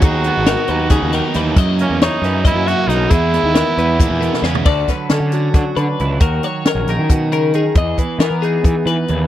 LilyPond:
<<
  \new Staff \with { instrumentName = "Clean electric guitar" } { \time 7/8 \key e \lydian \tempo 4 = 136 gis'4 ais'8 b'8 gis'8 ais'8 b'8 | dis''4 cis''8 b'8 dis''8 e''8 fis'8 | gis'4 ais'8 b'8 gis'8 ais'8 b'8 | d''8 b'8 a'8 fis'4 b'4 |
ais'8 cis''8 ais'8 ais'8 fis'8 ais'8 gis'8 | dis''8 b'8 ais'8 gis'4 b'4 | }
  \new Staff \with { instrumentName = "Trumpet" } { \time 7/8 \key e \lydian fis'2. r8 | r8 cis'8 dis'4 e'8 fis'8 dis'8 | e'2. r8 | r2. r8 |
r2. r8 | r2. r8 | }
  \new Staff \with { instrumentName = "Clean electric guitar" } { \time 7/8 \key e \lydian << { r8 b8 dis'8 dis'2 | r8 ais8 gis'8 cis'8 ais4 ais8 | r8 b8 b8 b2 | fis'4 cis'8 d'4 d'8 e'8 |
fis'4 cis'8 dis'2 | gis'4 b8 dis'2 | } \\ { dis2 cis8 dis8 e8 | fis,2~ fis,8 fis4 | e,2 ais,8 b,8 cis8 | d8 fis4. fis4. |
dis8 fis4. b,8 cis8 dis8 | e,8 e2~ e8 e,8 | } >> }
  \new Staff \with { instrumentName = "Overdriven electric guitar" } { \time 7/8 \key e \lydian <dis fis b dis'>8 <fis b dis'>8 <dis fis b dis'>4 <dis fis b dis'>8 <fis b dis'>8 <dis fis b dis'>8 | <fis, cis e ais e'>8 <e ais e'>8 <cis e ais e'>4 <fis, cis e ais e'>8 <e ais e'>8 <cis e ais e'>8 | <e gis b e'>8 <gis b e'>8 <e gis b e'>4 <e gis b e'>8 <gis b e'>8 <e gis b e'>8 | r2. r8 |
r2. r8 | r2. r8 | }
  \new Staff \with { instrumentName = "Picked electric bass" } { \clef bass \time 7/8 \key e \lydian dis,8. gis,,8 r16 dis,8. dis,8 r16 dis,8 | fis,8. e,8 r16 fis,8. fis,8 r16 b,,8 | e,8. dis,8 r16 e,8. e,8 r16 e,8 | d,8 r8 d16 d8. d16 r16 d16 r16 cis,8 |
dis,8 r8. ais,,16 ais,,16 dis4.~ dis16 | e,8 r8 e16 e8. e16 r16 e16 r16 dis,8 | }
  \new DrumStaff \with { instrumentName = "Drums" } \drummode { \time 7/8 <hh bd>8 hh8 <hh sn>8 hh8 <hh bd sn>8 <hh sn>8 <hh sn>8 | <hh bd>8 hh8 <hh sn>8 <hh sn>8 <hh bd>8 <hh sn>8 <hh sn>8 | <hh bd>8 <hh sn>8 <hh sn>8 hh8 <hh bd>8 hh16 sn16 sn16 tomfh16 | <cymc bd>8 <hh bd sn>8 <hh sn>8 <hh sn>8 <hh bd sn>8 hh8 hh8 |
<hh bd>8 hh8 <hh sn>8 <hh sn>8 <hh bd>8 hh8 hh8 | <hh bd>8 <hh bd>8 <hh sn>8 hh8 <hh bd>8 hh8 hh8 | }
>>